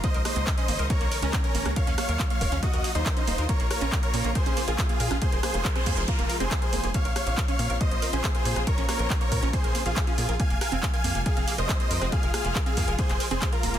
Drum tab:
HH |xxoxxxoxxxoxxxox|xxoxxxoxxxoxxxox|xxoxxxoxxxoxxxox|xxoxxxoxxxoxxxox|
CP |----x-------x---|----x-------x---|----x-------x---|----x-------x---|
SD |--r------------r|--r-------------|--r------------r|--r--r----------|
BD |o---o---o---o---|o---o-o-o---o---|o---o---o---o---|o---o-o-o---o---|

HH |xxoxxxoxxxoxxxox|xxoxxxoxxxoxxxox|xxoxxxoxxxoxxxox|xxoxxxoxxxoxxxox|
CP |----x-------x---|----x-------x---|----x-------x---|----x----x--x---|
SD |--r------------r|--r-------------|--r------------r|--r-------------|
BD |o---o---o---o---|o---o-o-o---o---|o---o---o---o---|o---o-o-o---o---|